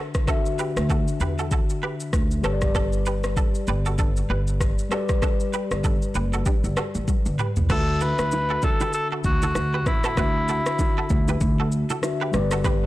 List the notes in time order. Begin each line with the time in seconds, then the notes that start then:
Already playing: D3 D4 F#4 E5
0.14 kick, cross-stick, shaker
0.25 D3 D4 F#4 A4, kick, cross-stick, shaker
0.30 E5
0.46 shaker
0.59 G4 B4, shaker
0.76 D2, cross-stick, shaker
0.90 F#4 A4, kick, shaker
1.08 shaker
1.20 E2 G4 B4, shaker
1.39 F#4 A4, shaker
1.51 F#4 A4, kick, shaker
1.70 shaker
1.83 G4 B4
2.00 shaker
2.13 D2, kick, cross-stick, shaker
2.31 shaker
2.42 G1 G3 G4 A4 B4, cross-stick, shaker
2.46 D4 C#5
2.53 D5
2.61 kick, cross-stick, shaker
2.75 D4 A4, kick, cross-stick, shaker
2.93 shaker
3.06 G4 B4, shaker
3.24 cross-stick, shaker
3.37 D4 A4, kick, shaker
3.55 shaker
3.67 G1 G4 B4, shaker
3.86 F#4 A4, shaker
3.98 D4 A4, kick, shaker
4.17 shaker
4.30 G1 G4 B4
4.47 shaker
4.61 kick, cross-stick, shaker
4.79 shaker
4.89 G3 F#4 G4 A4 B4, cross-stick, shaker
4.94 D5
5.09 kick, cross-stick, shaker
5.22 D4 A4, kick, cross-stick, shaker
5.40 shaker
5.53 G4 B4, shaker
5.71 G1, cross-stick, shaker
5.84 D4 A4, kick, shaker
6.02 shaker
6.15 F#1 G4 B4, shaker
6.33 F#4 A4, shaker
6.46 D4 G4, kick, shaker
6.64 G1, shaker
6.77 F#4 A4, cross-stick, shaker
6.95 A1, shaker
7.08 kick, high tom, shaker
7.26 G1, shaker
7.39 G4 B4, mid tom, shaker
7.56 C2, floor tom, shaker
7.67 D2 D3 D4 F4 F#4 A4 B4, kick, cross-stick, crash, low conga, shaker
7.72 E5
7.77 F#4
8.01 F#4 A4 B4, low bongo, shaker
8.19 D2, cross-stick, shaker
8.32 high bongo, shaker
8.50 F#4 A4
8.62 A4, kick, low bongo, low conga, shaker
8.80 G4 B4, high bongo, low bongo, shaker
8.93 A4, shaker
9.12 F#4 A4
9.24 D2 F#4, kick, shaker
9.42 F#4 A4, low bongo, shaker
9.55 D2, cross-stick, high bongo, shaker
9.74 G4 B4
9.86 A1 E4, kick, cross-stick, low conga, shaker
10.04 F#4 A4, cross-stick, shaker
10.15 D2 D3 D4 F#4 B4, kick, cross-stick, low conga, shaker
10.19 F#4 E5
10.48 F#4 A4, low bongo, shaker
10.66 cross-stick, shaker
10.79 kick, high bongo, shaker
10.98 F#4 A4
11.09 D2, kick, low bongo, low conga, shaker
11.28 G4 B4, high bongo, low bongo, shaker
11.41 D2, kick, shaker
11.60 F#4 A4
11.72 shaker
11.90 F#4 A4, low bongo, shaker
12.02 D3 D4 F#4 E5, cross-stick, high bongo, shaker
12.21 G4 B4
12.31 G1 G3 G4 B4, cross-stick, low conga, shaker
12.36 D5
12.51 F#4 A4, cross-stick, shaker
12.64 G4 B4, kick, cross-stick, low conga, shaker